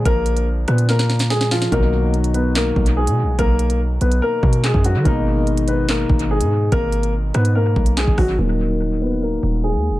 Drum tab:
HH |x-xx--xx---x--o-|x---xxx-x--x-x--|x-xx--xx---x--x-|x---xxx-x--x-x--|
CP |----------------|--------x-------|------------x---|--------x-------|
SD |------r-oooooooo|--------o-------|------------o---|--------o-------|
BD |o---------------|o---------o-----|o---------o--o--|o---------o-----|

HH |x-xx--xx---x--o-|----------------|
CP |------------x---|----------------|
SD |------r-----o-r-|----------------|
BD |o---------o--oo-|----------------|